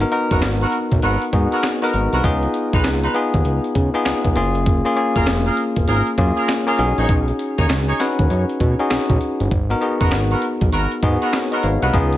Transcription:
0.00 B3 D#4 F#4 A#4, closed hi-hat
0.11 B3 D#4 F#4 A#4, closed hi-hat
0.31 F#1 B3 F#4 A#4, kick, closed hi-hat
0.42 G#1, snare, clap, closed hi-hat
0.61 B3 F#4 A#4, closed hi-hat
0.72 closed hi-hat
0.91 B1, kick, closed hi-hat
1.02 G#1 B3 F#4 A#4, closed hi-hat
1.22 closed hi-hat
1.33 G#2 B3 D#4 F#4 G#4, kick, closed hi-hat
1.52 B3 F#4 A#4, closed hi-hat
1.63 snare, clap, closed hi-hat
1.82 B3 D#4 F#4 A#4, closed hi-hat
1.94 G#1, closed hi-hat
2.12 C2 B3 F#4 A#4, closed hi-hat
2.24 C#2 B3 D#4 F4 G#4, kick, closed hi-hat
2.43 closed hi-hat
2.54 closed hi-hat
2.73 B1 D#4 F4 B4, kick, closed hi-hat
2.84 C#2, snare, clap, closed hi-hat
3.03 D#4 F4 B4, closed hi-hat
3.14 B3 D#4 F4 G#4, closed hi-hat
3.34 D#2, kick, closed hi-hat
3.45 C#2, closed hi-hat
3.64 closed hi-hat
3.75 C#3, kick, closed hi-hat
3.94 B3 D#4 F4 G#4, closed hi-hat
4.05 C#2, snare, clap, closed hi-hat
4.25 C#2, kick, closed hi-hat
4.35 F#1 A#3 C#4 F4 G#4, closed hi-hat
4.55 closed hi-hat
4.66 kick, closed hi-hat
4.85 A#3 C#4 F4 G#4, closed hi-hat
4.96 A#3 C#4 F4 G#4, closed hi-hat
5.15 F#1 F4 G#4 A#4, kick, closed hi-hat
5.27 F1, snare, clap, closed hi-hat
5.46 F4 G#4 A#4, closed hi-hat
5.57 closed hi-hat
5.76 F#1, kick, closed hi-hat
5.87 G#1 F4 G#4 A#4, closed hi-hat
6.07 closed hi-hat
6.17 F#2 A#3 C#4 F4 G#4, kick, closed hi-hat
6.37 F4 G#4 A#4, closed hi-hat
6.48 snare, clap, closed hi-hat
6.67 A#3 C#4 F4 G#4 A#4, closed hi-hat
6.78 B1 C#4 D#4 F#4 G#4, closed hi-hat
6.97 A#1 D#4 G#4 C#5, closed hi-hat
7.09 B1, kick, closed hi-hat
7.28 closed hi-hat
7.39 closed hi-hat
7.58 D#2 D#4 G#4 C#5, kick, closed hi-hat
7.70 C#2, snare, clap, closed hi-hat
7.88 D#4 G#4 C#5, closed hi-hat
8.00 C#4 D#4 F#4 B4, snare, closed hi-hat
8.19 D#2, kick, closed hi-hat
8.30 F#2, closed hi-hat
8.49 closed hi-hat
8.60 B2, kick, closed hi-hat
8.79 C#4 D#4 F#4 G#4, closed hi-hat
8.90 B1, snare, clap, closed hi-hat
9.10 B1, kick, closed hi-hat
9.21 closed hi-hat
9.40 G1, closed hi-hat
9.51 G#1, kick, closed hi-hat
9.70 B3 D#4 F#4 A#4, closed hi-hat
9.81 B3 D#4 F#4 G#4, closed hi-hat
10.00 F#1 B3 F#4 A#4, kick, closed hi-hat
10.12 G#1, snare, clap, closed hi-hat
10.31 B3 F#4 A#4, closed hi-hat
10.42 closed hi-hat
10.61 B1, kick, closed hi-hat
10.72 G#1 B3 F#4 A#4, closed hi-hat
10.92 closed hi-hat
11.03 G#2 B3 D#4 F#4 G#4, kick, closed hi-hat
11.22 B3 F#4 A#4, closed hi-hat
11.33 A#4 C#5, snare, clap, closed hi-hat
11.52 B3 F#4 A#4 B4 D#5, closed hi-hat
11.63 G#1 C#5 F5, closed hi-hat
11.82 C2 B3 F#4 A#4 D#5 F#5, closed hi-hat
11.93 C#2 B3 D#4 F4 G#4, kick, closed hi-hat
12.13 closed hi-hat

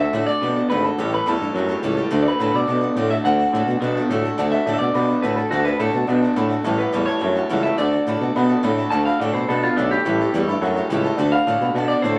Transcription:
Already playing: D3 A3
0.00 D4 F#4 A4 E5
0.13 A2 D3 A3 D4 F#4 A4
0.26 D4 F#4 A4 D5
0.41 B2 D3 A3 B3 D4 F#4 A4
0.56 D4 F#4 A4
0.70 G#1 D3 A3 D4 F#4 A4 B4
0.84 D4 F#4 A4
0.97 A1 A2 E3 G3 C#4 G4 A4
1.12 G3 C#4 G4 A4 B4
1.26 E2 A2 E3 G3 C#4 G4 A4
1.40 G2 C#4 G4 A4
1.45 G3
1.54 F#2 A2 F#3 G3 C#4 G4
1.58 A4
1.69 G3 C#4 G4 A4
1.83 C#2 A2 E3 G3 C#4 G4 A4
1.97 G3 C#4 G4 A4
2.11 D2 D3 A3 D4 F#4 A4
2.23 A4 D5
2.27 D4 F#4 B4
2.40 A2 D3 A3 D4 F#4 A4 B4
2.53 B2 D4 F#4 A4 D5
2.68 B2 D3 A3 B3 D4 F#4 A4
2.81 D4 F#4 A4
2.95 A2 D3 A3 D4 F#4 A4
3.10 D4 F#4 A4 E5
3.24 D2 D3 A3 D4 F#4 A4 F#5
3.39 D4 F#4 A4
3.53 A2 D3 A3 D4 F#4 A4
3.66 B2 F#4 A4
3.71 D4
3.80 B2 D3 A3 B3 D4 F#4
3.84 A4
3.97 D4 F#4 A4
4.09 A2 D3 A3 D4 F#4 A4
4.25 D4 F#4 A4
4.38 D2 D3 A3 D4 F#4 A4 D5 F#5 A5
4.51 D4 F#4 A4 D5 E5 F#5 A5
4.66 A2 D3 A3 D4 F#4 A4 D5 F#5 A5
4.74 E5
4.79 B2 F#4 A4 D5 F#5 A5
4.84 D4
4.94 B2 D3 A3 B3 D4 F#4 A4 D5 F#5 B5
5.07 F#4 A4 D5 F#5 B5
5.13 D4
5.22 A2 D3 A3 D4 F#4 A4 B4 D5 F#5 A5
5.36 F#4 A4 D5 F#5 A5
5.40 D4
5.50 D2 D3 A3 D4 F#4 A4 D5 F#5 A5
5.64 D4 F#4 A4 B4 D5 F#5 A5
5.78 A2 D3 A3 D4 F#4 A4 D5 F#5 A5
5.93 B2 D4 F#4 A4 D5 F#5 A5
6.06 B2 D3 A3 B3 D4 F#4 A4 D5 F#5 A5
6.21 F#4 A4 D5 F#5 A5
6.26 D4
6.36 A2 D3 A3 D4 F#4 A4 D5 F#5 B5
6.50 D4 F#4 A4 D5 F#5 A5
6.64 A1 A2 E3 G3 C#4 G4 A4 C#5 E5 A5
6.78 G3 C#4 G4 A4 B4 C#5 E5 F#5
6.93 E2 A2 E3 G3 C#4 G4 A4 C#5 E5 A5
7.06 G3 C#4 G4 A4 C#5 E5 A5
7.19 F#2 A2 F#3 G3 C#4 G4 A4 C#5 E5 A5
7.35 G3 C#4 G4 A4 C#5 E5 F#5
7.49 C#2 A2 E3 G3 C#4 G4 A4 C#5 E5 F#5
7.63 G3 C#4 G4 A4 C#5 E5 A5
7.78 D2 D3 A3 D4 F#4 A4 D5 F#5 A5
7.92 D4 F#4 A4 D5 F#5 A5
8.07 A2 D3 A3 D4 F#4 A4 D5 F#5 B5
8.20 B2 D4 F#4 A4 D5 F#5 A5
8.35 B2 D3 A3 B3 D4 F#4 D5 F#5 B5
8.39 A4
8.49 D4 F#4 A4 D5 F#5 A5
8.63 A2 D3 A3 D4 F#4 A4 D5 F#5 B5
8.77 D4 F#4 A4 D5 F#5 B5
8.91 D2 D3 A3 D4 F#4 A4 D5 F#5 A5
9.05 D4 F#4 A4 D5 F5 F#5 B5
9.19 A2 D3 A3 D4 F#4 A4 D5 F#5 A5
9.33 B2 F#4 A4 C5 D5 F#5 B5
9.38 D4
9.48 B2 D3 A3 B3 D4 F#4 A4 D5 F#5 B5
9.52 A4
9.62 D4 F4 F#4 A4 D5 F#5 B5
9.76 B1 D3 A3 D4 F#4 A4 D5 F#5 A5
9.91 D4 F#4 G4 A4 D5 F#5 B5
10.05 A1 A2 E3 G3 C#4 G4 A4 C#5 E5 A5
10.19 C#4 G4 A4 C#5 E5 B5
10.23 G3
10.33 E2 A2 E3 G3 C#4 G4 A4 C#5 E5 G5
10.47 G2 C#4 G4 A4 C#5 E5 B5
10.52 G3
10.61 F#2 A2 F#3 G3 C#4 C#5 E5 F#5
10.65 G4 A4
10.75 G3 C#4 G4 A4 C#5 E5 G5
10.90 C#2 A2 E3 G3 C#4 G4 A4 C#5 E5 G5
11.03 G3 C#4 G4 A4 C#5 E5 A5
11.16 D2 D3 A3 D4 F#4 D5 F#5 A5
11.20 A4
11.32 D4 F#4 A4 D5 F5 F#5 B5
11.46 A2 D3 A3 D4 F#4 A4 D5 F#5 A5
11.61 B2 D4 F#4 A4 D5 F#5 B5
11.74 B2 D3 A3 B3 D4 D5 F#5 A5
11.78 F#4 A4
11.88 F#4 A4 D5 F#5
11.92 D4
12.02 A2 D3 A3 D4 F#4 A4 C5 D5 F#5 A5

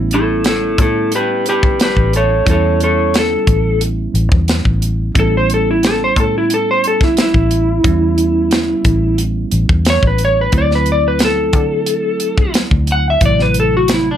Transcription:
Already playing: A1 G3 B3 C#4 E4
0.11 E4 A4, closed hi-hat
0.44 E4 A4, snare, closed hi-hat
0.78 A2 E4 A4, kick, closed hi-hat
1.12 G4, closed hi-hat
1.16 B4
1.46 G4 B4, closed hi-hat
1.63 A1, kick
1.80 G4 B4, snare, closed hi-hat
1.96 A1, kick
2.13 A4 C#5, closed hi-hat
2.46 E2 G3 B3 C#4 E4, kick, closed hi-hat
2.50 A4 C#5
2.80 A4 C#5, closed hi-hat
3.14 snare, closed hi-hat
3.19 A4
3.47 A1, kick, closed hi-hat
3.81 closed hi-hat
4.14 A1, closed hi-hat
4.32 E2, kick
4.48 snare, closed hi-hat
4.65 A1, kick
4.82 closed hi-hat
5.15 A1 G3 B3 C#4 E4, kick, closed hi-hat
5.20 A4
5.37 C5
5.50 closed hi-hat
5.54 A4
5.71 E4
5.83 A4, snare, closed hi-hat
6.04 C5
6.16 A2 A4, kick, closed hi-hat
6.38 E4
6.50 A4, closed hi-hat
6.71 C5
6.84 A4, closed hi-hat
7.00 A1 E4, kick, snare
7.17 E4, snare, closed hi-hat
7.34 A1, kick
7.51 closed hi-hat
7.84 E2 G3 B3 C#4 E4, kick, closed hi-hat
8.18 closed hi-hat
8.51 snare, closed hi-hat
8.85 A1, kick, closed hi-hat
9.18 closed hi-hat
9.51 A1, closed hi-hat
9.69 E2, kick
9.85 snare, closed hi-hat
9.90 C#5
10.03 A1, kick
10.07 B4
10.18 closed hi-hat
10.25 C#5
10.41 B4
10.52 D2 F#3 A3 C4 E4, kick, closed hi-hat
10.58 D5
10.71 snare
10.75 B4
10.86 closed hi-hat
10.92 D5
11.08 B4
11.19 snare, closed hi-hat
11.25 A4
11.53 D3, kick, closed hi-hat
11.86 closed hi-hat
12.20 closed hi-hat
12.37 D2, kick
12.54 snare, closed hi-hat
12.71 D2, kick
12.87 closed hi-hat
12.92 F#5
13.10 E5
13.21 A1 C3 F#3 A3 E4, kick, closed hi-hat
13.26 D5
13.39 B4, snare
13.54 closed hi-hat
13.60 A4
13.77 F#4
13.88 snare, closed hi-hat
13.94 E4
14.11 D4

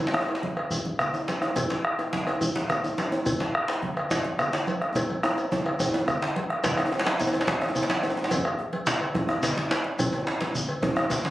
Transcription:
0.00 cowbell, high conga
0.07 djembe slap
0.14 bombo rim, djembe tone
0.21 djembe tone
0.28 cowbell, djembe slap
0.35 djembe slap
0.43 djembe tone, high conga, djembe bass, low conga
0.57 bombo rim, cowbell, djembe slap
0.71 bombo rim, bombo low, cowbell, shekere
0.85 djembe slap, high conga
0.99 bombo rim, cowbell, djembe bass, low conga, shekere
1.14 djembe tone, shekere
1.28 bombo rim, cowbell, djembe slap, high conga, shekere
1.42 bombo rim, djembe slap, djembe tone
1.56 bombo low, cowbell, djembe tone, low conga, djembe bass, shekere
1.70 cowbell, djembe slap, high conga
1.85 bombo rim
1.99 cowbell, djembe slap, djembe tone
2.13 djembe slap, high conga, djembe tone, low conga, djembe bass
2.27 bombo rim, cowbell, djembe slap, djembe tone
2.41 bombo rim, bombo low, cowbell, djembe bass, shekere
2.55 djembe slap, high conga
2.69 bombo rim, cowbell, djembe tone, low conga, djembe bass, shekere
2.84 djembe tone, shekere
2.98 bombo rim, cowbell, djembe slap, high conga, shekere
3.12 djembe slap, djembe tone
3.26 bombo low, cowbell, djembe tone, low conga, djembe bass, shekere
3.40 cowbell, djembe slap, high conga
3.55 bombo rim
3.68 cowbell, djembe slap
3.82 djembe tone, high conga, djembe bass, low conga
3.97 bombo rim, cowbell, djembe slap
4.11 bombo rim, bombo low, cowbell, djembe slap, shekere
4.24 djembe slap, high conga
4.39 bombo rim, cowbell, djembe tone, low conga, shekere
4.53 djembe slap, shekere
4.67 bombo rim, cowbell, high conga, shekere
4.82 bombo rim, djembe slap
4.95 bombo low, cowbell, djembe slap, djembe tone, djembe bass, low conga, shekere
5.09 cowbell, djembe slap, high conga
5.23 bombo rim, djembe tone
5.38 cowbell, djembe slap, shekere
5.52 djembe slap, high conga, djembe tone, low conga, djembe bass, shekere
5.66 bombo rim, cowbell
5.80 bombo low, cowbell, djembe tone, shekere
5.94 bombo rim, djembe slap, djembe tone
6.08 bombo rim, cowbell, djembe slap, high conga, djembe tone, low conga, djembe bass, shekere
6.22 djembe slap
6.36 bombo rim, cowbell, high conga
6.50 bombo rim, djembe slap
6.64 bombo low, cowbell, djembe slap, high conga, low conga, djembe bass, shekere
6.77 bombo rim, cowbell, high conga, djembe tone
6.85 djembe tone
6.92 djembe slap, djembe tone
6.99 djembe slap
7.05 cowbell, djembe slap, high conga
7.19 djembe tone, low conga, djembe bass, shekere
7.27 djembe tone
7.33 cowbell, high conga, djembe tone
7.41 djembe slap
7.47 bombo rim, bombo low, cowbell, djembe slap, high conga, djembe tone
7.62 bombo rim, djembe slap, djembe tone
7.69 djembe tone
7.75 cowbell, high conga, djembe tone, low conga, djembe bass, shekere
7.83 djembe slap
7.89 djembe slap, high conga
8.03 bombo rim, cowbell, djembe slap, djembe tone, high conga, shekere
8.10 djembe tone
8.17 djembe slap, djembe tone
8.24 djembe slap
8.31 bombo low, cowbell, djembe slap, high conga, djembe bass, low conga, shekere
8.45 bombo rim, cowbell, high conga
8.59 djembe slap, djembe tone
8.73 cowbell, djembe slap, high conga
8.87 bombo rim, djembe slap, low conga, djembe bass, shekere
9.01 cowbell, high conga
9.15 bombo rim, bombo low, cowbell, high conga, djembe tone
9.29 bombo rim, djembe slap, djembe tone
9.42 cowbell, djembe slap, high conga, djembe bass, low conga, shekere
9.57 djembe slap, high conga
9.71 bombo rim, cowbell, djembe slap, djembe tone, high conga, shekere
9.84 djembe slap
9.98 bombo low, cowbell, djembe slap, high conga, djembe tone, djembe bass, low conga, shekere
10.13 cowbell, djembe tone, high conga
10.27 djembe slap, djembe tone
10.41 cowbell, djembe slap, high conga
10.55 bombo rim, djembe bass, low conga, shekere
10.69 cowbell, high conga
10.82 bombo rim, bombo low, cowbell, high conga, djembe tone
10.96 bombo rim, djembe slap, djembe tone
11.10 cowbell, djembe slap, high conga, low conga, djembe bass, shekere
11.24 djembe slap, high conga

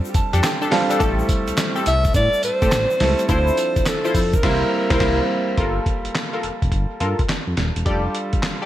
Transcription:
Already playing: G3 C4 D4 F4 A4
0.05 shaker
0.14 F2 A5, kick, closed hi-hat, tambourine, shaker
0.33 F2 D4 G4 A4, closed hi-hat, shaker
0.43 G5, snare, clap, closed hi-hat, tambourine, shaker
0.61 D4 G4 A4, shaker
0.71 G3 C4 D4 F4 A4 F5, snare, open hi-hat, tambourine
0.90 D4 G4 A4, closed hi-hat, shaker
0.99 A1 G3 A3 C4 E4 G4 A4, kick, closed hi-hat, shaker
1.19 shaker
1.29 kick, closed hi-hat, tambourine, shaker
1.47 C2, closed hi-hat, shaker
1.57 snare, clap, closed hi-hat, tambourine, shaker
1.75 C4 G4 A4, shaker
1.86 C2 E5, closed hi-hat, tambourine, shaker
2.05 kick, closed hi-hat, shaker
2.14 A2 D5, kick, closed hi-hat, tambourine, shaker
2.33 shaker
2.43 A2 C5, closed hi-hat, tambourine, shaker
2.62 A2 C4 G4 A4, kick, closed hi-hat, shaker
2.71 A1, snare, clap, closed hi-hat, tambourine, shaker
2.90 shaker
3.00 C#2 G3 A3 C4 E4 A4, snare, open hi-hat, tambourine
3.19 closed hi-hat, shaker
3.28 D2 F3 C4 D4 E4 F4 A4 C5, kick, closed hi-hat, shaker
3.48 shaker
3.57 closed hi-hat, tambourine, shaker
3.76 F2, kick, closed hi-hat, shaker
3.86 A4, snare, clap, closed hi-hat, tambourine, shaker
4.04 E4 F4 C5, shaker
4.15 F2, kick, open hi-hat, tambourine, shaker
4.33 A#4, kick, closed hi-hat, shaker
4.43 C2 G3 A#3 C4 E4 A#4 C5, kick, snare, crash
4.51 A#4
4.90 C2 G3 A#3 C4 E4 A#4 C5, kick, snare
4.98 C2 G3 A#3 C4 E4 A#4 C5, kick, snare, crash
5.57 G1 G3 A#3 F4 A4 A#4, kick, closed hi-hat
5.86 kick, closed hi-hat
6.05 F1, closed hi-hat
6.15 snare, clap, closed hi-hat
6.33 F4 A4 A#4
6.43 F1, closed hi-hat
6.62 F1, kick, closed hi-hat
6.72 G1, kick, closed hi-hat
7.00 G2 F4 A4 A#4, closed hi-hat
7.19 kick, closed hi-hat
7.29 snare, clap, closed hi-hat
7.47 F2
7.57 D#1, snare, closed hi-hat
7.76 E1, closed hi-hat
7.85 F1 G3 D4 F4 G4 A4 D5, kick, closed hi-hat
8.15 closed hi-hat
8.33 G1, kick, closed hi-hat
8.43 snare, clap, closed hi-hat
8.62 G4 A4

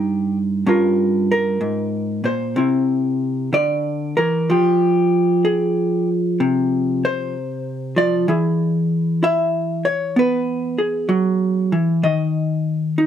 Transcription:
Already playing: G2 D#4 G4
0.66 G2 C#4 F4 A#4
1.31 A#4
1.61 G#2
2.24 A#2 C5
2.56 C3 C4 E4
3.53 D3 D5
4.17 E3 A#4
4.50 F3 G4
5.45 G#4
6.40 C3
7.05 C5
7.96 F3 D5
8.28 E3 E4 G#4
9.23 E4 E5
9.85 C#5
10.16 B3 B4
10.78 G#4
11.09 F#3
11.72 E3
12.03 D#3 D#5
12.98 D#4

